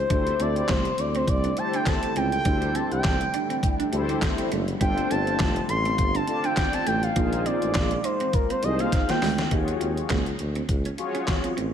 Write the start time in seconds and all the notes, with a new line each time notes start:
0.10 D2 D3 G3 A3 C4 D4 E4 G4 A4 C5, kick, closed hi-hat
0.27 muted clean electric guitar stroke, closed hi-hat
0.40 D2 C4 D5, closed hi-hat
0.56 D5, closed hi-hat
0.68 C2 A3 C5, kick, snare, clap, closed hi-hat
0.85 closed hi-hat
0.98 D2 D5, muted clean electric guitar stroke, closed hi-hat
1.15 C4 C5, closed hi-hat
1.27 C2 D5, kick, closed hi-hat
1.44 D4, closed hi-hat
1.56 E4 G4 A4 C5 A5, muted clean electric guitar stroke, closed hi-hat
1.73 D4 G5, closed hi-hat
1.86 A5, muted clean electric guitar stroke, kick, snare, clap, closed hi-hat
2.03 C4, closed hi-hat
2.16 C#2 C4 G5, closed hi-hat
2.32 G5, closed hi-hat
2.45 D2 D4 E4 G4 A4 C5, kick, closed hi-hat
2.62 muted clean electric guitar stroke, closed hi-hat
2.75 C4 A5, closed hi-hat
2.91 C2 G5, closed hi-hat
3.04 C2, muted clean electric guitar stroke, kick, snare, clap, closed hi-hat
3.21 closed hi-hat
3.34 D4, closed hi-hat
3.50 C4, closed hi-hat
3.63 kick, closed hi-hat
3.80 D4, closed hi-hat
3.92 D2 E4 G4 A4 C5, muted clean electric guitar stroke, closed hi-hat
4.09 D4, closed hi-hat
4.22 muted clean electric guitar stroke, kick, snare, clap, closed hi-hat
4.38 C4, closed hi-hat
4.51 F#1 A3, closed hi-hat
4.68 closed hi-hat
4.80 G1 G3 C4 D4 F4 A4 C5 G5, kick, closed hi-hat
4.97 muted clean electric guitar stroke, closed hi-hat
5.10 G1 C4 A5, closed hi-hat
5.27 closed hi-hat
5.39 F1 A3, kick, snare, clap, closed hi-hat
5.56 closed hi-hat
5.69 A1 C6, muted clean electric guitar stroke, closed hi-hat
5.85 C4, closed hi-hat
5.98 G1 C6, kick, closed hi-hat
6.15 D4 A5, closed hi-hat
6.27 D4 F4 A4 D5 A5, muted clean electric guitar stroke, closed hi-hat
6.44 D4 G5, closed hi-hat
6.57 G5, muted clean electric guitar stroke, kick, snare, clap, closed hi-hat
6.73 C4 A5, closed hi-hat
6.87 A1 A3 G5, closed hi-hat
7.03 F5, closed hi-hat
7.16 A#1 D#3 G#3 A#3 D#4 F4 G#4 C5, kick, closed hi-hat
7.33 muted clean electric guitar stroke, closed hi-hat
7.46 C4 D5, closed hi-hat
7.62 A1, closed hi-hat
7.74 A#1, muted clean electric guitar stroke, kick, snare, clap, closed hi-hat
7.91 closed hi-hat
8.04 D#4 C5, closed hi-hat
8.20 C4, closed hi-hat
8.33 A#4, kick, closed hi-hat
8.50 C4 C5, closed hi-hat
8.63 C2 D#4 F4 G#4 C5 D#5, muted clean electric guitar stroke, closed hi-hat
8.79 A#3 F5, closed hi-hat
8.92 muted clean electric guitar stroke, kick, snare, closed hi-hat
9.09 A#3 G5, snare, closed hi-hat
9.22 D2 G#3, snare, open hi-hat
9.38 snare, closed hi-hat
9.50 D#2 D#4 F4 F#4 G#4 C#5, kick, closed hi-hat
9.68 muted clean electric guitar stroke, closed hi-hat
9.81 D#2 C4, closed hi-hat
9.97 closed hi-hat
10.10 C#2 A#3, kick, snare, clap, closed hi-hat
10.26 closed hi-hat
10.39 D2, muted clean electric guitar stroke, closed hi-hat
10.55 C4, closed hi-hat
10.69 C#2, kick, closed hi-hat
10.85 C#4, closed hi-hat
10.98 F4 F#4 G#4 C#5, muted clean electric guitar stroke, closed hi-hat
11.15 C#4, closed hi-hat
11.28 kick, snare, clap, closed hi-hat
11.44 C4, closed hi-hat
11.57 A1 C4, closed hi-hat